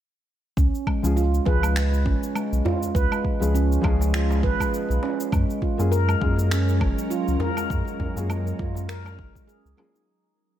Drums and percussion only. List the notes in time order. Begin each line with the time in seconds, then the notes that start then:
0.57 kick, cabasa
0.75 cabasa
0.87 kick, low woodblock
1.04 cabasa
1.17 cabasa
1.34 cabasa
1.46 kick, darbuka tek
1.63 cabasa, low woodblock
1.76 finger snap, cabasa
1.94 cabasa
2.05 kick, darbuka ka
2.23 cabasa
2.35 cabasa, low woodblock
2.53 cabasa
2.66 darbuka ka, darbuka dum
2.83 cabasa
2.95 kick, cabasa
3.12 cabasa, low woodblock
3.25 kick
3.42 darbuka ka, cabasa
3.55 cabasa
3.72 cabasa
3.83 kick, darbuka ka, darbuka tek, low woodblock
4.01 darbuka ka, cabasa
4.14 finger snap, cabasa
4.31 darbuka ka, cabasa
4.43 kick
4.60 kick, darbuka ka, cabasa, low woodblock
4.74 cabasa
4.91 cabasa
5.03 darbuka tek
5.20 cabasa
5.32 kick, cabasa, low woodblock
5.50 cabasa
5.62 kick
5.80 cabasa
5.93 cabasa
6.09 cabasa, low woodblock
6.21 kick, darbuka tek
6.39 cabasa
6.51 finger snap, cabasa
6.69 cabasa
6.81 kick, darbuka ka, low woodblock
6.98 cabasa
7.11 cabasa
7.28 cabasa
7.40 darbuka ka, darbuka dum
7.57 cabasa, low woodblock
7.70 kick, cabasa
7.87 cabasa
8.00 kick, darbuka dum
8.16 darbuka ka, cabasa
8.30 cabasa, low woodblock
8.47 cabasa
8.59 kick, darbuka ka, darbuka tek
8.75 darbuka ka, cabasa
8.89 finger snap, cabasa
9.05 darbuka ka, cabasa, low woodblock
9.19 kick
9.35 kick, darbuka ka, cabasa
9.49 cabasa
9.66 cabasa
9.78 darbuka tek, low woodblock
9.96 cabasa